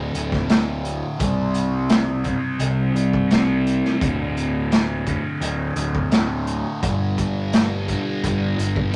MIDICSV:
0, 0, Header, 1, 4, 480
1, 0, Start_track
1, 0, Tempo, 704225
1, 815, Time_signature, 4, 2, 24, 8
1, 6106, End_track
2, 0, Start_track
2, 0, Title_t, "Distorted electric guitar"
2, 0, Program_c, 0, 30
2, 0, Note_on_c, 0, 38, 59
2, 0, Note_on_c, 0, 45, 67
2, 0, Note_on_c, 0, 50, 71
2, 319, Note_off_c, 0, 38, 0
2, 319, Note_off_c, 0, 50, 0
2, 325, Note_off_c, 0, 45, 0
2, 327, Note_on_c, 0, 38, 68
2, 339, Note_on_c, 0, 45, 69
2, 349, Note_on_c, 0, 50, 73
2, 796, Note_off_c, 0, 38, 0
2, 802, Note_off_c, 0, 45, 0
2, 807, Note_off_c, 0, 50, 0
2, 808, Note_on_c, 0, 48, 79
2, 820, Note_on_c, 0, 55, 70
2, 835, Note_on_c, 0, 60, 78
2, 1516, Note_off_c, 0, 48, 0
2, 1520, Note_off_c, 0, 60, 0
2, 1522, Note_off_c, 0, 55, 0
2, 1528, Note_on_c, 0, 60, 77
2, 1544, Note_on_c, 0, 55, 66
2, 1554, Note_on_c, 0, 48, 56
2, 2234, Note_off_c, 0, 48, 0
2, 2237, Note_off_c, 0, 60, 0
2, 2242, Note_on_c, 0, 48, 69
2, 2245, Note_off_c, 0, 55, 0
2, 2255, Note_on_c, 0, 55, 68
2, 2273, Note_on_c, 0, 60, 84
2, 2714, Note_off_c, 0, 48, 0
2, 2721, Note_off_c, 0, 55, 0
2, 2724, Note_on_c, 0, 38, 69
2, 2729, Note_off_c, 0, 60, 0
2, 2738, Note_on_c, 0, 45, 71
2, 2753, Note_on_c, 0, 50, 78
2, 3436, Note_off_c, 0, 38, 0
2, 3438, Note_off_c, 0, 50, 0
2, 3443, Note_off_c, 0, 45, 0
2, 3446, Note_on_c, 0, 50, 78
2, 3463, Note_on_c, 0, 45, 64
2, 3476, Note_on_c, 0, 38, 63
2, 4157, Note_off_c, 0, 50, 0
2, 4165, Note_off_c, 0, 45, 0
2, 4169, Note_off_c, 0, 38, 0
2, 4177, Note_on_c, 0, 38, 70
2, 4191, Note_on_c, 0, 45, 71
2, 4202, Note_on_c, 0, 50, 75
2, 4642, Note_off_c, 0, 38, 0
2, 4649, Note_off_c, 0, 45, 0
2, 4649, Note_on_c, 0, 43, 78
2, 4651, Note_off_c, 0, 50, 0
2, 4660, Note_on_c, 0, 50, 76
2, 4677, Note_on_c, 0, 55, 79
2, 5359, Note_off_c, 0, 43, 0
2, 5363, Note_off_c, 0, 55, 0
2, 5364, Note_off_c, 0, 50, 0
2, 5372, Note_on_c, 0, 55, 76
2, 5385, Note_on_c, 0, 50, 64
2, 5399, Note_on_c, 0, 43, 62
2, 6068, Note_off_c, 0, 43, 0
2, 6077, Note_on_c, 0, 43, 70
2, 6080, Note_off_c, 0, 55, 0
2, 6086, Note_off_c, 0, 50, 0
2, 6106, Note_off_c, 0, 43, 0
2, 6106, End_track
3, 0, Start_track
3, 0, Title_t, "Picked electric bass"
3, 0, Program_c, 1, 34
3, 100, Note_on_c, 1, 26, 87
3, 686, Note_off_c, 1, 26, 0
3, 816, Note_on_c, 1, 36, 87
3, 1600, Note_off_c, 1, 36, 0
3, 1766, Note_on_c, 1, 36, 95
3, 1966, Note_off_c, 1, 36, 0
3, 2005, Note_on_c, 1, 36, 86
3, 2598, Note_off_c, 1, 36, 0
3, 2734, Note_on_c, 1, 26, 87
3, 3520, Note_off_c, 1, 26, 0
3, 3687, Note_on_c, 1, 26, 85
3, 3887, Note_off_c, 1, 26, 0
3, 3923, Note_on_c, 1, 26, 87
3, 4518, Note_off_c, 1, 26, 0
3, 4653, Note_on_c, 1, 31, 80
3, 5440, Note_off_c, 1, 31, 0
3, 5614, Note_on_c, 1, 31, 91
3, 5811, Note_off_c, 1, 31, 0
3, 5847, Note_on_c, 1, 31, 84
3, 6106, Note_off_c, 1, 31, 0
3, 6106, End_track
4, 0, Start_track
4, 0, Title_t, "Drums"
4, 100, Note_on_c, 9, 42, 54
4, 168, Note_off_c, 9, 42, 0
4, 220, Note_on_c, 9, 36, 78
4, 224, Note_on_c, 9, 38, 29
4, 288, Note_off_c, 9, 36, 0
4, 292, Note_off_c, 9, 38, 0
4, 338, Note_on_c, 9, 42, 77
4, 343, Note_on_c, 9, 38, 99
4, 406, Note_off_c, 9, 42, 0
4, 411, Note_off_c, 9, 38, 0
4, 579, Note_on_c, 9, 42, 60
4, 647, Note_off_c, 9, 42, 0
4, 817, Note_on_c, 9, 42, 76
4, 819, Note_on_c, 9, 36, 98
4, 885, Note_off_c, 9, 42, 0
4, 887, Note_off_c, 9, 36, 0
4, 1051, Note_on_c, 9, 42, 55
4, 1120, Note_off_c, 9, 42, 0
4, 1290, Note_on_c, 9, 42, 78
4, 1296, Note_on_c, 9, 38, 106
4, 1359, Note_off_c, 9, 42, 0
4, 1364, Note_off_c, 9, 38, 0
4, 1528, Note_on_c, 9, 42, 55
4, 1534, Note_on_c, 9, 36, 67
4, 1596, Note_off_c, 9, 42, 0
4, 1603, Note_off_c, 9, 36, 0
4, 1769, Note_on_c, 9, 42, 73
4, 1837, Note_off_c, 9, 42, 0
4, 2016, Note_on_c, 9, 42, 55
4, 2084, Note_off_c, 9, 42, 0
4, 2136, Note_on_c, 9, 36, 71
4, 2204, Note_off_c, 9, 36, 0
4, 2254, Note_on_c, 9, 42, 77
4, 2260, Note_on_c, 9, 38, 90
4, 2322, Note_off_c, 9, 42, 0
4, 2328, Note_off_c, 9, 38, 0
4, 2500, Note_on_c, 9, 42, 55
4, 2568, Note_off_c, 9, 42, 0
4, 2623, Note_on_c, 9, 38, 29
4, 2691, Note_off_c, 9, 38, 0
4, 2736, Note_on_c, 9, 36, 97
4, 2738, Note_on_c, 9, 42, 71
4, 2804, Note_off_c, 9, 36, 0
4, 2806, Note_off_c, 9, 42, 0
4, 2979, Note_on_c, 9, 42, 53
4, 3047, Note_off_c, 9, 42, 0
4, 3216, Note_on_c, 9, 42, 72
4, 3221, Note_on_c, 9, 38, 100
4, 3284, Note_off_c, 9, 42, 0
4, 3289, Note_off_c, 9, 38, 0
4, 3453, Note_on_c, 9, 42, 50
4, 3454, Note_on_c, 9, 36, 74
4, 3521, Note_off_c, 9, 42, 0
4, 3522, Note_off_c, 9, 36, 0
4, 3690, Note_on_c, 9, 42, 72
4, 3759, Note_off_c, 9, 42, 0
4, 3926, Note_on_c, 9, 42, 57
4, 3995, Note_off_c, 9, 42, 0
4, 4053, Note_on_c, 9, 36, 70
4, 4121, Note_off_c, 9, 36, 0
4, 4168, Note_on_c, 9, 42, 75
4, 4173, Note_on_c, 9, 38, 94
4, 4236, Note_off_c, 9, 42, 0
4, 4241, Note_off_c, 9, 38, 0
4, 4411, Note_on_c, 9, 42, 56
4, 4479, Note_off_c, 9, 42, 0
4, 4654, Note_on_c, 9, 36, 99
4, 4656, Note_on_c, 9, 42, 73
4, 4722, Note_off_c, 9, 36, 0
4, 4724, Note_off_c, 9, 42, 0
4, 4894, Note_on_c, 9, 36, 65
4, 4895, Note_on_c, 9, 42, 56
4, 4963, Note_off_c, 9, 36, 0
4, 4963, Note_off_c, 9, 42, 0
4, 5133, Note_on_c, 9, 42, 79
4, 5138, Note_on_c, 9, 38, 104
4, 5201, Note_off_c, 9, 42, 0
4, 5206, Note_off_c, 9, 38, 0
4, 5373, Note_on_c, 9, 36, 70
4, 5374, Note_on_c, 9, 42, 60
4, 5441, Note_off_c, 9, 36, 0
4, 5442, Note_off_c, 9, 42, 0
4, 5615, Note_on_c, 9, 36, 69
4, 5615, Note_on_c, 9, 42, 75
4, 5683, Note_off_c, 9, 36, 0
4, 5683, Note_off_c, 9, 42, 0
4, 5857, Note_on_c, 9, 42, 60
4, 5925, Note_off_c, 9, 42, 0
4, 5973, Note_on_c, 9, 36, 76
4, 6041, Note_off_c, 9, 36, 0
4, 6106, End_track
0, 0, End_of_file